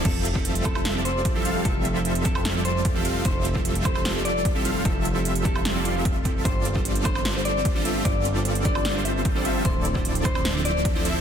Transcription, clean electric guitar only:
\new Staff \with { instrumentName = "Clean electric guitar" } { \time 4/4 \key f \major \tempo 4 = 150 a'8 r4 a'8 r8 c''8 r4 | a'8 r4 a'8 r8 c''8 r4 | c''8 r4 c''8 r8 d''8 r4 | a'8 r4 a'8 r8 f'8 r4 |
c''8 r4 c''8 r8 d''8 r4 | d''8 r4 d''8 r8 e''8 r4 | c''8 r4 c''8 r8 d''8 r4 | }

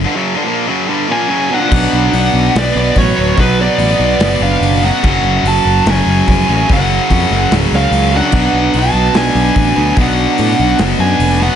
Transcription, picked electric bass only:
\new Staff \with { instrumentName = "Picked electric bass" } { \clef bass \time 4/4 \tempo 4 = 145 r1 | b,,8 b,,8 b,,8 b,,8 b,,8 b,,8 a,,8 d,,8 | b,,4 a,,8 b,,8 fis,,8 fis,,8 fis,,4 | fis,,8 fis,,8 fis,,8 fis,,8 fis,,8 fis,,8 eis,,8 a,,8 |
fis,,4 eis,8 fis,,8 cis,,8 cis,8 cis,4 | b,,8 b,,8 b,,8 b,,8 b,,8 b,,8 a,,8 d,8 | b,,4 a,8 b,,8 fis,,8 fis,8 eis,,4 | }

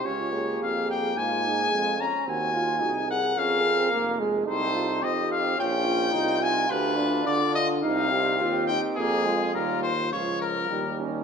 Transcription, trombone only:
\new Staff \with { instrumentName = "Trombone" } { \time 4/4 \key des \lydian \tempo 4 = 107 des'8 bes2~ bes8 aes8 des'8 | c'8 f'8 ees'8 r8 des'8 c'8 bes8 aes8 | ees'4 c'4 des'4 ees'8 f'8~ | f'2 ees'8 c'4. |
bes8 aes8 g8 r8 f4 g4 | }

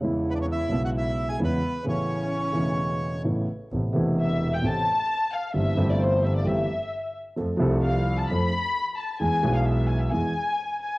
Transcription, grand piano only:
\new Staff \with { instrumentName = "Grand piano" } { \clef bass \time 4/4 \key a \major \tempo 4 = 131 <e, cis e gis b e'>4. <b,, b, cis gis b e'>4. <e, cis e gis b e'>8 r8 | <a,, a, cis a b e'>4. <e,, e, cis a b e'>4. <a,, a, cis a b e'>8 r8 | \key a \minor <a,, a, c a b e'>8 <e,, e, c a b e'>4. <a,, a, c a b e'>8 r4. | <g,, g, e a c' g'>8 <g,, g, e a c' g'>4. <g,, g, e a c' g'>8 r4. |
<f, f a c' a'>8 <c, c f a c' a'>4. <f, f a c' a'>8 r4. | <e, e gis b gis'>8 <b,, b, e gis b gis'>4. <e, e gis b gis'>8 r4. | }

